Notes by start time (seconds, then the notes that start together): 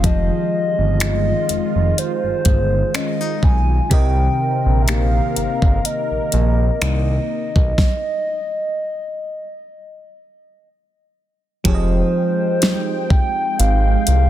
Already playing: F1 D#3 F3 G#3 C4 F4 G4 G#4 D#5
0.04 F3 G4 D#5, kick, closed hi-hat
0.79 G1
1.00 G#3 D#4, finger snap, closed hi-hat
1.49 F1, closed hi-hat
1.75 F1
1.98 C5, closed hi-hat
2.24 G1
2.45 G1 G#3, kick, closed hi-hat
2.94 C#4 D#5, finger snap, closed hi-hat
3.21 D#4
3.43 B1 G#5, kick
3.90 C2 C3 C4 G4 A#4 D#5 G5, kick, closed hi-hat
4.66 A#1
4.82 E5
4.88 A#3 D#4 G4 F5, finger snap, closed hi-hat
5.36 G1 F5, closed hi-hat
5.62 G1, kick
5.84 A#3 D#5, closed hi-hat
6.11 A#1
6.32 A#1 A#3, closed hi-hat
6.82 C2 D#4, finger snap, closed hi-hat
7.56 B1, kick
7.78 kick, snare
11.64 F1 F3 G#3 C4 D#4 G4 G#4 C5 C#5 G5, kick, closed hi-hat
11.74 D#5
12.62 D#4, snare, closed hi-hat
13.10 G5, kick
13.59 G#1 F5, closed hi-hat
14.07 C2, closed hi-hat